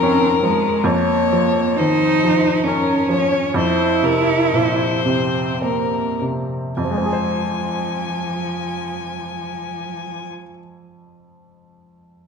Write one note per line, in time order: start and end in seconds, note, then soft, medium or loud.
0.00 0.80 F2 soft
0.00 0.86 D#3 soft
0.00 0.43 F3 soft
0.00 0.41 C4 medium
0.00 0.67 C#4 soft
0.00 0.88 A#4 medium
0.43 0.84 F3 soft
0.43 0.85 G#3 medium
0.84 3.51 F2 soft
0.84 1.78 A#3 medium
0.84 1.80 C#5 medium
1.33 2.06 F3 soft
1.76 2.23 D#3 soft
1.76 2.66 D#4 medium
1.76 2.65 C5 soft
2.24 2.92 F3 soft
2.64 3.58 C#4 medium
2.64 3.38 C#4 soft
2.64 3.09 A#4 soft
3.09 3.55 F3 soft
3.09 3.55 C#5 soft
3.54 6.75 F2 soft
3.54 5.06 E4 medium
3.54 4.05 C5 soft
4.02 4.84 C3 soft
4.02 4.56 A#4 soft
4.53 5.06 A#2 soft
4.53 5.62 C5 soft
5.06 5.97 C3 soft
5.06 5.65 C4 soft
5.62 6.22 A#3 soft
5.62 6.57 C4 soft
5.62 6.21 A#4 soft
6.22 6.80 C3 soft
6.77 10.22 F2 soft
6.77 10.25 F3 soft
6.81 10.30 F3 soft
6.81 10.27 G#5 soft
6.91 10.36 G#3 soft
6.98 10.43 C4 soft
7.05 10.51 G#4 soft
7.13 10.58 C5 soft